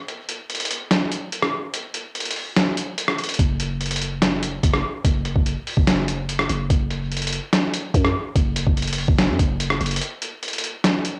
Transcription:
0.08 closed hi-hat
0.29 closed hi-hat
0.50 closed hi-hat
0.55 closed hi-hat
0.60 closed hi-hat
0.65 closed hi-hat
0.71 closed hi-hat
0.91 snare, closed hi-hat
1.12 closed hi-hat
1.32 closed hi-hat
1.43 cross-stick
1.74 closed hi-hat
1.94 closed hi-hat
2.15 closed hi-hat
2.20 closed hi-hat
2.25 closed hi-hat
2.31 closed hi-hat
2.36 open hi-hat
2.56 snare, closed hi-hat
2.77 closed hi-hat
2.98 closed hi-hat
3.08 cross-stick
3.19 closed hi-hat
3.24 closed hi-hat
3.29 closed hi-hat
3.34 closed hi-hat
3.39 F#1, kick, closed hi-hat
3.60 closed hi-hat
3.81 closed hi-hat
3.86 closed hi-hat
3.91 closed hi-hat
3.96 closed hi-hat
4.02 closed hi-hat
4.22 snare, closed hi-hat
4.43 closed hi-hat
4.63 F#1, kick, closed hi-hat
4.74 cross-stick
5.05 F#1, kick, closed hi-hat
5.25 closed hi-hat
5.36 F#1, kick
5.46 closed hi-hat
5.67 open hi-hat
5.77 F#1, kick
5.87 snare, closed hi-hat
6.08 closed hi-hat
6.29 closed hi-hat
6.39 cross-stick
6.49 F#1, closed hi-hat
6.70 F#1, kick, closed hi-hat
6.91 closed hi-hat
7.12 closed hi-hat
7.17 closed hi-hat
7.22 closed hi-hat
7.27 closed hi-hat
7.33 closed hi-hat
7.53 snare, closed hi-hat
7.74 closed hi-hat
7.94 F#2, kick, closed hi-hat
8.05 cross-stick
8.36 F#1, kick, closed hi-hat
8.56 closed hi-hat
8.67 F#1, kick
8.77 closed hi-hat
8.82 closed hi-hat
8.87 closed hi-hat
8.93 closed hi-hat
8.98 open hi-hat
9.08 F#1, kick
9.18 snare, closed hi-hat
9.29 F#2
9.39 F#1, kick, closed hi-hat
9.60 closed hi-hat
9.70 cross-stick
9.81 F#1, closed hi-hat
9.86 closed hi-hat
9.91 closed hi-hat
9.96 closed hi-hat
10.01 closed hi-hat
10.22 closed hi-hat
10.43 closed hi-hat
10.48 closed hi-hat
10.53 closed hi-hat
10.58 closed hi-hat
10.64 closed hi-hat
10.84 snare, closed hi-hat
11.05 closed hi-hat

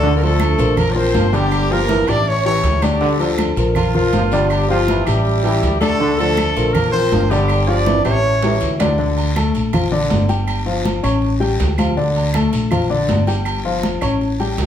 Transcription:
Already playing: D2 A3 A4
0.03 D3 D4 D5, high conga, long guiro
0.15 A#3 A#4
0.22 D3 F3 A3 F4 A4, high conga, low agogo
0.40 high conga, low timbale, low agogo, short guiro, claves
0.58 A#1 F3 F4 A#4, high conga, low agogo, short guiro
0.77 A#3 A#4, high conga, low conga, low agogo, long guiro, claves
0.91 D4 D5
0.95 F3 C4 F4 A#4 C5, high conga
1.14 G1 F3, high conga, low timbale, low agogo, short guiro
1.33 D3 G3 D4 G4 D5, high conga, low agogo, short guiro
1.51 high conga, low agogo, long guiro, claves
1.70 F3 A#3 F4 G4 A#4, high conga
1.89 E3, high conga, low timbale, low agogo, short guiro
2.07 A1 E3 D4 E4 G4 D5, high conga, low agogo, short guiro, claves
2.26 C#4 C#5, high conga, long guiro
2.45 E3 C#4 E4 G4 C#5, high conga, low agogo
2.63 D2, high conga, low timbale, low agogo, short guiro
2.82 D3 G3 D4 G4 D5, high conga, low agogo, short guiro, claves
3.01 D3 D4 D5, high conga, long guiro
3.19 D3 F3 F4 A4, high conga, low agogo
3.38 high conga, low timbale, low agogo, short guiro, claves
3.56 A#1 F3 F4 A#4, high conga, low agogo, short guiro
3.75 F3 F4, high conga, low conga, low agogo, long guiro, claves
3.94 F3 F4 A#4, high conga, low conga
4.13 G1 F3, high conga, low timbale, low agogo, short guiro
4.31 D3 G3 D4 D5, high conga, low agogo, short guiro
4.50 G3 G4, high conga, low agogo, long guiro, claves
4.68 F3 F4 G4, high conga
4.87 E3, high conga, low timbale, low agogo, short guiro
5.05 A1 E3 G3 E4 G4, high conga, low agogo, short guiro, claves
5.25 high conga, long guiro
5.43 E3 E4 G4, high conga, low agogo
5.62 D2, high conga, low timbale, low agogo, short guiro
5.80 D3 A3 D4 A4 D5, high conga, low agogo, short guiro, claves
6.00 D3 D4 D5, high conga, long guiro
6.17 D3 F3 A3 F4 A4, high conga, low agogo
6.37 high conga, low timbale, low agogo, short guiro, claves
6.56 A#1 F3 F4 A#4, high conga, low agogo, short guiro
6.73 A#3 A#4, high conga, low conga, low agogo, long guiro, claves
6.92 F3 C4 F4 A#4 C5, high conga
7.12 G1 F3, high conga, low timbale, low agogo, short guiro
7.30 D3 G3 D4 G4 D5, high conga, low agogo, short guiro
7.48 high conga, low agogo, long guiro, claves
7.67 F3 D4 F4 G4 D5, high conga
7.86 E3, high conga, high timbale, low agogo, short guiro
8.04 A1 E3 C#4 E4 G4 C#5, high conga, high timbale, low agogo, short guiro, claves
8.23 high conga, long guiro
8.42 E3 E4 G4, high conga, low timbale, low agogo
8.61 D2, high conga, low agogo, short guiro
8.80 D3 D4 D5, high conga, low timbale, low agogo, short guiro, claves
8.98 D3 D4 D5, high conga, long guiro
9.17 high conga, low agogo
9.36 A3 A4 A5, high conga, low timbale, low agogo, short guiro, claves
9.54 A#1, high conga, low agogo, short guiro
9.73 F3 F4 F5, high conga, low conga, low agogo, long guiro, claves
9.92 D3 D4 D5, high conga
10.10 G1, high conga, low timbale, low agogo, short guiro
10.29 G3 G4 G5, high conga, low agogo, short guiro
10.47 high conga, low agogo, long guiro, claves
10.66 F3 F4 F5, high conga
10.85 high conga, low timbale, low agogo, short guiro
11.03 A1 C#4 C#5 C#6, high conga, low agogo, short guiro, claves
11.22 high conga, long guiro
11.40 G3 G4 G5, high conga, low agogo
11.59 D2, high conga, low timbale, low agogo, short guiro
11.78 F3 F4 F5, high conga, low agogo, short guiro, claves
11.97 D3 D4 D5, high conga, long guiro
12.16 high conga, low agogo
12.34 A3 A4 A5, high conga, low timbale, low agogo, short guiro, claves
12.53 A#1, high conga, low agogo, short guiro
12.71 F3 F4 F5, high conga, low conga, low agogo, long guiro, claves
12.90 D3 D4 D5, high conga
13.08 G1, high conga, low timbale, low agogo, short guiro
13.27 G3 G4 G5, high conga, low agogo, short guiro
13.45 high conga, low agogo, long guiro, claves
13.64 F3 F4 F5, high conga
13.83 high conga, low timbale, low agogo, short guiro
14.01 A1 C#4 C#5 C#6, high conga, low agogo, short guiro, claves
14.21 high conga, long guiro
14.40 G3 G4 G5, high conga, low agogo
14.58 D2, high conga, low timbale, low agogo, short guiro

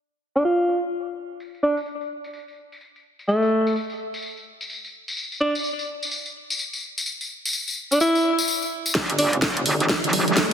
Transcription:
0.36 D4
0.45 F4
1.40 tambourine
1.55 tambourine
1.63 D4
1.77 tambourine
1.86 tambourine
2.01 tambourine
2.24 tambourine
2.33 tambourine
2.48 tambourine
2.72 tambourine
2.81 tambourine
2.96 tambourine
3.19 tambourine
3.28 A3, tambourine
3.42 tambourine
3.67 tambourine
3.76 tambourine
3.90 tambourine
4.14 tambourine
4.22 tambourine
4.37 tambourine
4.61 tambourine
4.70 tambourine
4.85 tambourine
5.08 tambourine
5.17 tambourine
5.32 tambourine
5.41 D4
5.55 tambourine
5.64 tambourine
5.79 tambourine
6.03 tambourine
6.11 tambourine
6.26 tambourine
6.50 tambourine
6.59 tambourine
6.73 tambourine
6.98 tambourine
7.06 tambourine
7.21 tambourine
7.45 tambourine
7.53 tambourine
7.68 tambourine
7.92 D4, tambourine
8.00 E4, tambourine
8.15 tambourine
8.39 tambourine
8.48 tambourine
8.62 tambourine
8.86 tambourine
8.95 G1, kick, snare, closed hi-hat, riser
9.10 closed hi-hat
9.19 D4, open hi-hat
9.33 closed hi-hat
9.42 F1, kick, snare, closed hi-hat
9.57 closed hi-hat
9.66 G1, open hi-hat
9.80 closed hi-hat
9.89 kick, snare, closed hi-hat
10.04 G1, closed hi-hat
10.13 open hi-hat
10.28 closed hi-hat
10.37 G1, kick, snare, closed hi-hat

